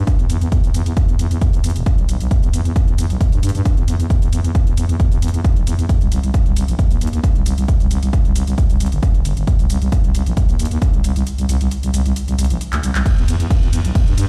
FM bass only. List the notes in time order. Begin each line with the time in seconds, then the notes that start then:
0.19 E2
0.30 E2
0.41 E2
0.64 E2
0.74 E2
0.86 E2
1.09 E2
1.19 E2
1.31 E2
1.53 E2
1.64 E2
1.76 E1
1.98 B1
2.09 B1
2.20 B1
2.43 E2
2.54 E2
2.65 E2
2.88 E2
2.98 E2
3.10 B1
3.32 G2
3.43 G2
3.55 G2
3.77 E2
3.88 E2
4.00 E2
4.22 E2
4.33 E2
4.44 E2
4.67 E2
4.77 E2
4.89 E2
5.12 E2
5.22 E2
5.34 E2
5.56 B1
5.67 E2
5.79 E2
6.01 C2
6.12 C2
6.23 C2
6.46 C2
6.56 C2
6.68 A#1
6.91 D#2
7.01 D#2
7.13 D#2
7.35 C2
7.46 C2
7.58 C2
7.80 C2
7.91 C2
8.03 C2
8.25 C2
8.36 C2
8.47 C2
8.70 C2
8.80 C2
8.92 G1
9.14 G1
9.25 G1
9.37 G1
9.59 C2
9.70 C2
9.82 C2
10.04 C2
10.15 C2
10.26 A#1
10.49 D#2
10.59 D#2
10.71 D#2
10.94 C2
11.04 C2
11.16 C2
11.38 C2
11.49 C2
11.61 C2
11.83 C2
11.94 C2
12.06 C2
12.28 C2
12.38 C2
12.50 A#1
12.73 D2
12.83 C2
12.95 C2
13.18 E2
13.28 E2
13.40 E2
13.62 E2
13.73 E2
13.85 B1
14.07 G2
14.18 G2